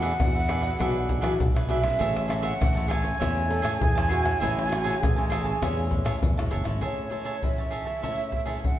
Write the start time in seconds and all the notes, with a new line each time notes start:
Already playing: E2 E3 F#5
0.02 D4 G#4 B4 E5, pandeiro, shaker
0.20 E2 B2 G#3 D4 F#4, pandeiro, tamborim, shaker, surdo
0.35 G#4 B4 E5, pandeiro, shaker
0.48 D4 G#4 B4 E5, pandeiro, tamborim
0.62 G#4 B4 E5, pandeiro, shaker
0.79 B1 E3 G#3 D4 F#4 G#4 B4 E5, pandeiro, tamborim, shaker, surdo
0.96 pandeiro, shaker
1.09 pandeiro, shaker, surdo
1.21 E3 G#3 D4 F#4 G#4 B4 E5, pandeiro, tamborim, shaker
1.40 B1 B2, pandeiro, shaker, surdo
1.55 G#4 B4 E5, pandeiro, tamborim, shaker
1.69 G#3 D4 F#4 G#4 B4 E5, pandeiro, shaker
1.82 G#3 C#4 E4 G#4 B4 E5, pandeiro, tamborim, shaker
1.99 A1 A2 G#4 C#5 E5 A5, pandeiro, shaker, surdo
2.16 pandeiro, tamborim, shaker
2.28 G#3 C#4 E4 G#4 C#5 E5 A5, pandeiro, tamborim, shaker
2.42 G#4 C#5 E5 F#5 A5, pandeiro, shaker
2.60 A1 E3, pandeiro, tamborim, shaker, surdo
2.75 G#3 C#4 E4 C#5 E5 A5, pandeiro, shaker
2.88 G#4 C#5 E5 G#5 A5, pandeiro, tamborim
3.02 C#5 E5 A5, pandeiro, shaker
3.19 E2 A2 G#3 C#4 E4 C#5 E5, pandeiro, tamborim, shaker, surdo
3.38 pandeiro, shaker
3.49 C#4 E4 A4, pandeiro, shaker
3.62 A2 G#4 C#5 E5 A5, pandeiro, tamborim, shaker
3.79 E2 E3 G#4, pandeiro, shaker, surdo
3.95 G#3 C#4 E4 C#5 E5 A5, pandeiro, tamborim, shaker
4.09 F#4 G#4 C#5 E5 A5, pandeiro
4.22 G#3 C#4 E4 C#5 E5 A5, pandeiro, tamborim, shaker
4.39 A1 A2 G#3 C#4 E4 G#4 C#5 E5 A5, pandeiro, shaker, surdo
4.59 pandeiro, tamborim, shaker
4.68 G#3 C#4 E4 F#4 G#4 C#5 E5 A5
4.72 pandeiro, tamborim
4.84 G#4 C#5 E5 A5, pandeiro, shaker
5.01 A1 E3 G#4, pandeiro, tamborim, shaker, surdo
5.16 G#3 C#4 E4 C#5 E5 A5, pandeiro, shaker
5.30 G#4 C#5 E5 A5, pandeiro, tamborim
5.44 C#5 E5 A5, pandeiro, shaker
5.62 E2 A2 G#3 C#4 E4 C#5 E5, pandeiro, tamborim, shaker, surdo
5.78 pandeiro, shaker
5.90 G#3 C#4 E4, pandeiro, shaker, surdo
6.04 A2 G#4 C#5 E5 A5, pandeiro, tamborim, shaker
6.22 E2 E3, pandeiro, shaker, surdo
6.37 E1 G#3 C#4 E4 C#5 E5 A5, pandeiro, tamborim, shaker
6.50 F#1 G#4 C#5 E5 A5, pandeiro, shaker
6.64 G#1 G#3 C#4 E4 C#5 E5 A5, pandeiro, tamborim, shaker
6.81 A2 G#4 C#5 E5 A5, pandeiro, surdo
6.97 pandeiro
7.10 G#3 C#4 E4 G#4 C#5 E5 A5, pandeiro
7.25 G#4 C#5 E5 A5, pandeiro
7.43 E3 G#3 C#4 E4 E5, pandeiro, surdo
7.58 C#5 E5 A5, pandeiro
7.70 G#4 C#5 E5 A5, pandeiro
7.85 C#5 E5 A5, pandeiro
8.02 A2 G#3 C#4 E4 C#5 E5 A5, pandeiro, surdo
8.19 pandeiro
8.32 pandeiro, surdo
8.45 G#3 C#4 E4 G#4 C#5 E5 A5, pandeiro
8.64 E3 F#5, pandeiro, surdo